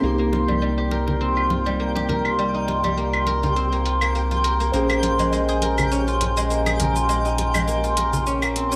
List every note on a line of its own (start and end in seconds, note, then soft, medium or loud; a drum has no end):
0.00 4.71 C2 medium
0.00 4.70 A#3 medium
0.00 0.19 A#3 medium
0.00 1.20 C4 medium
0.00 0.55 D#4 medium
0.00 4.71 D#4 medium
0.00 0.32 F4 medium
0.00 8.76 G4 medium
0.00 0.91 A#4 medium
0.00 8.76 G5 medium
0.00 shaker soft
0.05 4.72 G4 medium
0.19 1.79 A#3 medium
0.19 shaker soft
0.32 1.36 F4 medium
0.32 closed hi-hat medium
0.32 muted conga medium
0.48 0.61 G3 medium
0.48 high conga medium
0.48 claves medium
0.48 shaker medium
0.62 1.65 G3 medium
0.78 1.95 G4 medium
0.78 shaker soft
0.91 1.07 A#4 medium
0.91 closed hi-hat medium
0.91 muted conga soft
1.07 2.09 A#4 medium
1.07 low conga medium
1.21 3.56 C4 medium
1.37 1.50 F4 medium
1.37 claves medium
1.37 shaker soft
1.50 2.25 F4 medium
1.50 closed hi-hat medium
1.50 muted conga soft
1.50 high conga medium
1.66 2.37 G3 medium
1.66 muted conga soft
1.80 2.97 A#3 medium
1.80 shaker soft
1.95 4.31 G4 medium
1.95 muted conga medium
2.09 3.27 A#4 medium
2.09 closed hi-hat medium
2.09 high conga soft
2.09 low conga medium
2.25 2.68 F4 medium
2.25 claves medium
2.25 shaker medium
2.39 2.83 G3 medium
2.39 shaker soft
2.54 5.25 D#4 medium
2.54 shaker soft
2.68 3.13 F4 medium
2.68 closed hi-hat medium
2.68 muted conga medium
2.84 4.79 G3 medium
2.84 high conga medium
2.84 shaker medium
2.97 3.72 A#3 medium
2.97 shaker soft
3.13 3.43 F4 medium
3.13 claves medium
3.13 shaker soft
3.27 4.44 A#4 medium
3.27 closed hi-hat medium
3.27 muted conga soft
3.43 3.86 F4 medium
3.43 low conga medium
3.43 shaker medium
3.56 5.98 C4 medium
3.56 shaker soft
3.72 4.01 A#3 medium
3.72 shaker soft
3.86 4.31 F4 medium
3.86 closed hi-hat medium
4.01 4.15 A#3 medium
4.01 claves medium
4.01 shaker medium
4.15 4.60 A#3 medium
4.15 shaker soft
4.31 5.03 F4 medium
4.31 high conga soft
4.31 shaker soft
4.44 5.62 A#4 medium
4.44 closed hi-hat medium
4.60 4.73 A#3 medium
4.60 shaker medium
4.72 8.76 A#1 medium
4.72 4.89 A#3 medium
4.72 8.76 C#4 medium
4.72 8.76 C5 medium
4.72 shaker medium
4.76 8.76 G#4 medium
4.90 6.50 A#3 medium
4.90 claves medium
4.90 shaker soft
5.03 6.07 F4 medium
5.03 closed hi-hat medium
5.03 muted conga medium
5.19 5.31 G#3 medium
5.19 high conga medium
5.19 shaker medium
5.33 6.36 G#3 medium
5.33 shaker soft
5.49 6.66 G#4 medium
5.49 shaker soft
5.62 5.78 A#4 medium
5.62 closed hi-hat medium
5.62 muted conga soft
5.78 6.79 A#4 medium
5.78 low conga medium
5.78 claves medium
5.78 shaker medium
5.92 8.26 C#4 medium
5.92 shaker soft
6.08 6.21 F4 medium
6.08 shaker soft
6.21 6.95 F4 medium
6.21 closed hi-hat medium
6.21 muted conga soft
6.21 high conga medium
6.37 7.08 G#3 loud
6.37 muted conga soft
6.37 shaker medium
6.50 7.67 A#3 medium
6.50 shaker medium
6.66 8.76 G#4 medium
6.66 muted conga medium
6.66 claves medium
6.66 shaker soft
6.79 7.97 A#4 medium
6.79 closed hi-hat medium
6.79 high conga medium
6.79 low conga medium
6.96 7.38 F4 medium
6.96 shaker medium
7.09 7.53 G#3 medium
7.09 shaker medium
7.25 8.76 D#4 medium
7.25 shaker soft
7.38 7.83 F4 medium
7.38 closed hi-hat medium
7.38 muted conga medium
7.54 8.76 G#3 medium
7.54 high conga medium
7.54 claves medium
7.54 shaker medium
7.68 8.42 A#3 medium
7.68 shaker medium
7.84 8.13 F4 medium
7.84 shaker soft
7.97 8.76 A#4 medium
7.97 closed hi-hat medium
7.97 muted conga soft
8.13 8.76 F4 medium
8.13 low conga medium
8.13 shaker medium
8.27 8.62 C#4 medium
8.27 shaker soft
8.42 8.76 A#3 medium
8.42 claves medium
8.42 shaker soft
8.56 8.76 C4 medium
8.56 closed hi-hat medium
8.72 8.76 C#4 medium
8.72 shaker medium